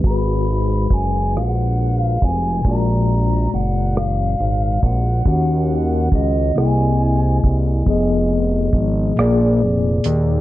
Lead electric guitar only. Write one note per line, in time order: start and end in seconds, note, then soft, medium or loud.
0.07 0.95 B5 loud
0.94 1.33 G#5 medium
1.37 1.97 F#5 medium
1.97 2.24 F5 medium
2.25 2.68 G#5 medium
2.67 3.49 A#5 loud
3.55 3.94 F#5 medium
3.98 4.80 F5 medium
4.84 5.27 F#5 medium
5.28 6.10 F#5 medium
6.15 6.54 D#5 medium
6.58 8.48 G#5 medium
8.48 9.57 F#5 medium